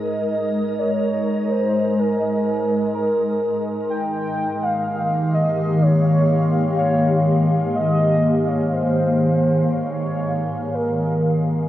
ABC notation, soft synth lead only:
X:1
M:4/4
L:1/16
Q:1/4=62
K:Ebmix
V:1 name="Soft synth lead"
e3 d3 c2 B4 B3 z | g3 f3 e2 d4 d3 z | e3 d c4 d4 B4 |]